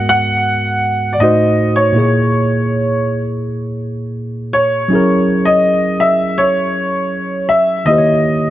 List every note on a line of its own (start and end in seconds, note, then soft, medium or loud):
0.00 1.16 G#2 medium
0.00 1.16 G#3 medium
0.00 1.17 B3 medium
0.00 1.18 F#4 medium
0.00 1.19 A#4 medium
0.09 1.10 F#5 loud
1.13 1.20 D5 medium
1.20 1.95 A2 medium
1.20 1.95 A3 medium
1.20 1.96 D#4 medium
1.20 1.96 F#4 medium
1.20 1.96 C5 medium
1.20 1.72 D#5 loud
1.76 3.20 C#5 medium
1.92 4.86 A#2 medium
1.92 4.87 A#3 medium
1.92 4.88 E4 medium
1.98 4.89 G#4 medium
1.98 4.89 C#5 medium
4.53 5.49 C#5 loud
4.88 7.82 F#3 medium
4.88 7.83 C#4 medium
4.88 7.84 E4 medium
4.93 7.85 G#4 medium
4.93 7.86 A#4 medium
5.45 6.03 D#5 loud
6.00 6.39 E5 loud
6.38 7.46 C#5 loud
7.49 7.88 E5 loud
7.85 8.50 D#3 medium
7.85 8.50 A#3 medium
7.85 8.50 E4 medium
7.85 8.50 D#5 loud
7.90 8.50 G4 medium
7.90 7.96 C5 medium
7.98 8.50 C#5 medium